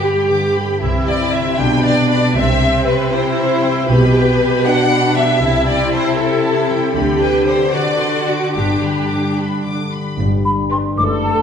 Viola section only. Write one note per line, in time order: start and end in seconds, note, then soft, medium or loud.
0.00 0.82 G4 soft
0.81 1.57 E4 soft
1.60 2.35 D4 soft
2.36 3.12 C4 soft
3.12 3.89 E4 medium
3.88 4.65 G4 medium
4.65 5.42 D4 medium
5.42 6.92 E4 medium
6.95 7.72 G4 soft
7.73 8.53 F#4 soft
8.55 9.76 D4 soft
10.99 11.42 A4 soft